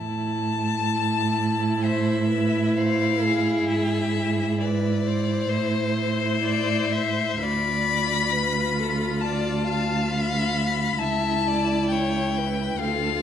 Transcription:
Already playing: cello A2, violin A5
0.00 viola E4
1.82 violin C5 E5
2.30 violin B4
2.77 violin C5 F5
3.24 violin G#4
3.68 cello G#2, violin E5
4.61 violin B4 D5
5.06 violin C5
5.49 cello A2, viola E4, violin C5
6.44 violin D5
6.92 violin E5
7.38 cello D2, viola F4, violin B5
7.42 violin D5
8.32 violin B4
8.79 violin A4
9.21 violin D5 A5
9.69 violin F5
10.09 violin B5
10.99 cello C#2, viola E4, violin E5 A5
11.47 violin D5
11.89 violin C#5 G5
12.38 violin B4
12.78 cello D2, viola F4, violin A4 F5

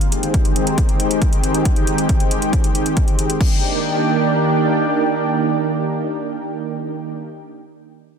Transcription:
Already playing: analog synth pad D#3 G#3 C4 G4
0.01 closed hi-hat
0.12 closed hi-hat
0.23 closed hi-hat
0.34 kick, closed hi-hat
0.45 closed hi-hat
0.56 closed hi-hat
0.67 closed hi-hat
0.78 kick, closed hi-hat
0.89 closed hi-hat
1.00 closed hi-hat
1.11 closed hi-hat
1.22 kick, closed hi-hat
1.33 closed hi-hat
1.44 closed hi-hat
1.54 closed hi-hat
1.65 kick, closed hi-hat
1.76 closed hi-hat
1.87 closed hi-hat
1.98 closed hi-hat
2.09 kick, closed hi-hat
2.20 closed hi-hat
2.31 closed hi-hat
2.42 closed hi-hat
2.53 kick, closed hi-hat
2.64 closed hi-hat
2.75 closed hi-hat
2.86 closed hi-hat
2.97 kick, closed hi-hat
3.08 closed hi-hat
3.19 closed hi-hat
3.30 closed hi-hat
3.41 analog synth pad D#3 A#3 D4 G4, kick, crash

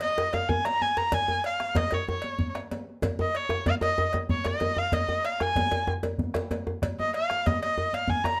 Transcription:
0.01 erhu D#5, cowbell
0.17 djembe slap
0.33 erhu F5, cowbell, djembe tone
0.49 erhu G#5, bombo low, djembe tone, djembe bass
0.65 erhu A#5, bombo rim, cowbell, djembe slap
0.82 erhu G#5, djembe tone
0.97 erhu A#5, djembe slap
1.12 erhu G#5, bombo rim, bombo low, cowbell, djembe slap, djembe tone, djembe bass
1.28 djembe tone
1.44 erhu F5, cowbell
1.60 bombo rim, djembe slap
1.75 erhu D#5, bombo low, cowbell, djembe slap, djembe tone, djembe bass
1.91 erhu C#5, cowbell, djembe tone
2.08 erhu C#5, djembe slap, djembe tone
2.22 cowbell, djembe tone
2.39 bombo low, djembe bass
2.55 bombo rim, cowbell, djembe slap
2.71 cowbell, djembe tone
3.02 bombo rim, bombo low, cowbell, djembe slap, djembe tone, djembe bass
3.19 erhu D#5, djembe tone
3.35 erhu C#5, cowbell
3.49 bombo rim, djembe slap, djembe tone
3.66 erhu F5, bombo low, cowbell, djembe tone, djembe bass
3.81 erhu D#5, cowbell, djembe tone
3.98 djembe slap, djembe tone
4.13 cowbell, djembe tone
4.29 erhu C#5, bombo low, djembe bass
4.44 erhu D#5, bombo rim, cowbell, djembe slap, djembe tone
4.60 cowbell, djembe tone
4.77 erhu F5, djembe tone
4.92 erhu D#5, bombo low, cowbell, djembe tone, djembe bass
5.08 djembe slap, djembe tone
5.25 erhu F5, cowbell, djembe slap
5.40 erhu G#5, bombo rim, djembe slap, djembe tone
5.55 bombo low, cowbell, djembe tone, djembe bass
5.71 cowbell, djembe tone
5.87 djembe tone
6.03 cowbell, djembe slap, djembe tone
6.18 bombo low, djembe bass
6.34 bombo rim, cowbell, djembe slap, djembe tone
6.51 cowbell, djembe slap, djembe tone
6.67 bombo rim, djembe slap, djembe tone
6.82 bombo rim, bombo low, cowbell, djembe slap, djembe bass
6.99 erhu D#5, djembe tone
7.14 erhu F5, cowbell
7.30 bombo rim, djembe slap
7.46 erhu D#5, bombo low, cowbell, djembe tone, djembe bass
7.62 erhu D#5, cowbell
7.78 djembe slap, djembe tone
7.93 erhu F5, cowbell, djembe tone
8.08 erhu G#5, bombo low, djembe bass
8.24 erhu A#5, bombo rim, cowbell, djembe slap, djembe tone

